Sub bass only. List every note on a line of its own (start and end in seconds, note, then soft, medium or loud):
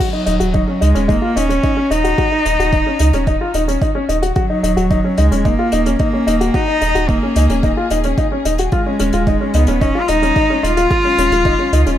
0.27 0.39 D#1 medium
0.41 0.64 D#1 loud
0.82 0.93 C#2 medium
0.95 1.18 D#1 medium
1.36 1.59 D#1 medium
1.90 2.14 D#1 medium
2.45 2.57 D#1 medium
2.59 2.82 D#1 medium
3.00 3.11 C#2 medium
3.13 3.36 D#1 medium
3.54 3.77 D#1 medium
4.09 4.32 D#1 medium
4.63 4.75 D#1 medium
4.77 5.00 D#1 loud
5.18 5.30 C#2 medium
5.31 5.55 D#1 medium
5.73 5.96 D#1 medium
6.27 6.50 D#1 medium
6.81 6.93 D#1 medium
6.95 7.18 D#1 loud
7.36 7.47 C#2 medium
7.49 7.73 D#1 medium
7.91 8.14 D#1 medium
8.45 8.68 D#1 medium
9.00 9.11 D#1 medium
9.13 9.37 D#1 loud
9.54 9.66 C#2 medium
9.68 9.91 D#1 medium
10.09 10.32 D#1 medium
10.63 10.87 D#1 medium
11.18 11.29 D#1 medium
11.31 11.55 D#1 loud
11.72 11.84 C#2 medium
11.86 11.98 D#1 medium